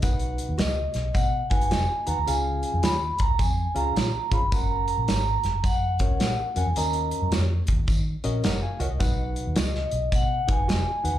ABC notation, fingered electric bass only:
X:1
M:4/4
L:1/16
Q:"Swing" 1/4=107
K:Blyd
V:1 name="Fingered electric bass" clef=bass
B,,,3 D,, C,,2 B,,,2 B,,2 F,,,2 E,,, z D,, =D,, | C,,3 E,, D,,2 C,,2 E,,2 C,,2 A,,, z G,,, =G,,, | F,,,3 A,,, G,,,2 F,,,2 F,,2 C,,2 A,,, z E,, =E,, | D,,3 F,, E,,2 D,,2 D,2 A,,,2 F,,, z C,, ^B,,, |
B,,,3 D,, C,,2 B,,,2 B,,2 F,,,2 E,,, z D,, =D,, |]